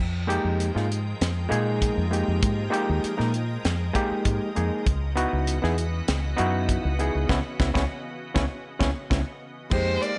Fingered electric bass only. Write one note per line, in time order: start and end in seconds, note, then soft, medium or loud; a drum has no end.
0.00 0.37 F2 medium
0.44 0.70 F2 medium
0.76 1.13 G#2 medium
1.21 1.46 F2 medium
1.51 1.89 A#2 loud
1.97 2.23 F2 medium
2.28 2.40 F2 medium
2.42 2.68 G#2 medium
2.89 3.01 D#2 medium
3.04 muted fingered electric bass stroke soft
3.19 3.57 A#2 medium
3.65 3.90 F2 medium
4.11 muted fingered electric bass stroke soft
4.25 4.38 G#2 medium
4.57 4.69 F2 medium
4.87 5.24 C#2 medium
5.33 5.58 C#2 medium
5.64 6.00 E2 medium
6.08 6.33 C#2 medium
6.39 6.77 F#2 medium
6.85 7.10 C#2 medium
7.15 7.27 C#2 medium
7.29 7.41 C#2 medium
7.60 7.71 C#2 medium
7.75 7.86 C#2 medium
8.35 8.47 C#2 medium
8.80 8.92 C#2 medium
9.11 9.23 C#2 medium
9.71 9.97 F2 medium